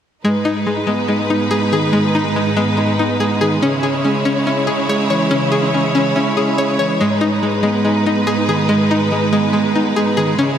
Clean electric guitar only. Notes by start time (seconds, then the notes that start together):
0.24 G#2
0.66 G#3
0.88 B3
1.09 D#4
1.30 B3
1.51 G#3
1.72 D#3
1.93 G#2
2.35 G#3
2.57 B3
2.78 D#4
2.99 B3
3.20 G#3
3.41 D#3
3.62 C#3
4.04 G#3
4.26 C#4
4.47 E4
4.68 C#4
4.89 G#3
5.10 E3
5.31 C#3
5.74 G#3
5.95 C#4
6.16 E4
6.37 C#4
6.58 G#3
6.79 E3
7.00 G#2
7.42 G#3
7.64 B3
7.85 D#4
8.06 B3
8.27 G#3
8.48 D#3
8.69 G#2
9.11 G#3
9.33 B3
9.54 D#4
9.75 B3
9.96 G#3
10.17 D#3
10.38 C#3